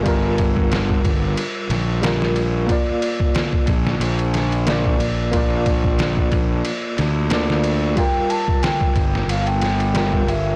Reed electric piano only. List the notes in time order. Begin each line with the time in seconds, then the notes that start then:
Already playing: G3 F4 A#4
0.03 G3 F4
0.08 A#4
2.02 G3 F4 A#4
2.67 A#3 F4
2.72 D5
4.67 A#3 F4 D5
5.31 A#3 F4
5.36 D5
7.31 A#3 F4 D5
7.95 G3 F4
8.00 A#4
9.94 G3 F4 A#4